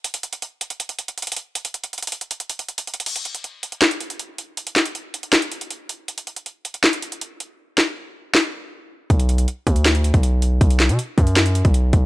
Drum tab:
CC |------------------------------------------------------------------------------------------------|------------------------------------------------------------------------------------------------|x-----------------------------------------------------------------------------------------------|------------------------------------------------------------------------------------------------|
HH |x-----x-----x-----x-----x-----------x-----x-----x-----x-----x-----x-----x--x--x--x--x-----------|x-----x-----x-----x-----x--x--x--x--x-----x-----x-----x-----x-----x-----x-----x-----x---x---x---|x-----x-----x-----x-----x-----------x-----x-----x-----x-----x-----x-----x-----------x-----------|x-----x-----x-----x-----x-----------x-----x-----x-----x-----x-----x-----x-----------x-----------|
CP |------------------------------------------------------------------------------------------------|------------------------------------------------------------------------------------------------|------------------------------------------------x-----------------------------------------------|------------x-----------------------------------x-----------------------------------------------|
SD |------------------------------------------------------------------------------------------------|------------------------------------------------------------------------------------------------|------------------------------------------------o-----------------------------------------------|------------o-----------------------------------o-----------------------------------------------|
BD |------------------------------------------------------------------------------------------------|------------------------------------------------------------------------------------------------|------------------------------------------------------------------------------------------------|------------------------------------------------------------------------------------------------|

CC |------------------------------------------------------------------------------------------------|------------------------------------------------------------------------------------------------|------------------------------------------------------------------------------------------------|------------------------------------------------------------------------------------------------|
HH |x-----x-----x-----x-----x-----------x-----x-----x-----x-----x-----x-----x-----------x-----------|------------------------------------------------------------------------------------------------|x-----x-----x-----x-----x-----------x-----x-----x-----x-----x-----x-----x-----------x-----------|x-----x-----x-----x-----x-----------x-----x-----x-----x-----x-----x-----x-----------x-----------|
CP |------------------------------------------------x-----------------------------------------------|------------x-----------------------------------x-----------------------------------------------|------------------------------------------------x-----------------------------------------------|------------x-----------------------------------x-----------------------------------------------|
SD |------------------------------------------------o-----------------------------------------------|------------o-----------------------------------o-----------------------------------------------|------------------------------------------------o-----------------------------------------------|------------o-----------------------------------o-----------------------------------------------|
BD |------------------------------------------------------------------------------------------------|------------------------------------------------------------------------------------------------|o-----------------------------------o-----------------------------o-----------------------------|o-----------------------------------o-----------------------------o-----------------o-----------|